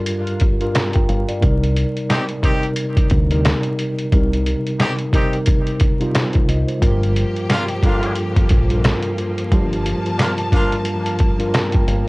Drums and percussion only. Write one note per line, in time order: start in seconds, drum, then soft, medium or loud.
0.06 closed hi-hat loud
0.27 closed hi-hat medium
0.40 kick loud
0.40 closed hi-hat medium
0.61 closed hi-hat soft
0.75 snare loud
0.75 clap medium
0.75 closed hi-hat loud
0.93 kick medium
0.93 closed hi-hat medium
1.09 closed hi-hat medium
1.29 closed hi-hat medium
1.42 kick loud
1.42 closed hi-hat medium
1.64 closed hi-hat medium
1.77 closed hi-hat medium
1.97 closed hi-hat soft
2.10 snare loud
2.10 clap medium
2.10 closed hi-hat medium
2.29 closed hi-hat medium
2.43 kick medium
2.43 closed hi-hat medium
2.63 closed hi-hat medium
2.76 closed hi-hat loud
2.97 kick loud
2.97 closed hi-hat medium
3.10 kick loud
3.10 closed hi-hat medium
3.31 closed hi-hat medium
3.45 snare loud
3.45 clap medium
3.45 closed hi-hat loud
3.63 closed hi-hat medium
3.79 closed hi-hat medium
3.98 closed hi-hat medium
4.12 kick loud
4.12 closed hi-hat medium
4.33 closed hi-hat medium
4.46 closed hi-hat medium
4.67 closed hi-hat soft
4.80 snare loud
4.80 clap medium
4.80 closed hi-hat medium
4.99 closed hi-hat medium
5.13 kick medium
5.13 closed hi-hat medium
5.33 closed hi-hat soft
5.46 kick loud
5.46 closed hi-hat loud
5.67 closed hi-hat medium
5.80 kick loud
5.80 closed hi-hat medium
6.01 closed hi-hat medium
6.15 snare loud
6.15 clap medium
6.15 closed hi-hat loud
6.33 kick medium
6.33 closed hi-hat medium
6.49 closed hi-hat medium
6.68 closed hi-hat medium
6.82 kick loud
6.82 closed hi-hat medium
7.03 closed hi-hat medium
7.16 closed hi-hat medium
7.36 closed hi-hat soft
7.50 snare loud
7.50 clap medium
7.50 closed hi-hat medium
7.68 closed hi-hat medium
7.83 kick medium
7.83 closed hi-hat medium
8.03 closed hi-hat soft
8.15 closed hi-hat loud
8.36 kick loud
8.36 closed hi-hat medium
8.49 kick loud
8.49 closed hi-hat medium
8.70 closed hi-hat medium
8.84 snare loud
8.84 clap medium
8.84 closed hi-hat loud
9.02 closed hi-hat medium
9.18 closed hi-hat medium
9.38 closed hi-hat medium
9.52 kick loud
9.52 closed hi-hat medium
9.73 closed hi-hat medium
9.86 closed hi-hat medium
10.06 closed hi-hat soft
10.19 snare loud
10.19 clap medium
10.19 closed hi-hat medium
10.38 closed hi-hat medium
10.52 kick medium
10.52 closed hi-hat medium
10.72 closed hi-hat soft
10.85 closed hi-hat loud
11.06 closed hi-hat medium
11.19 kick loud
11.19 closed hi-hat medium
11.40 closed hi-hat medium
11.54 snare loud
11.54 clap medium
11.54 closed hi-hat loud
11.72 kick medium
11.72 closed hi-hat medium
11.88 closed hi-hat medium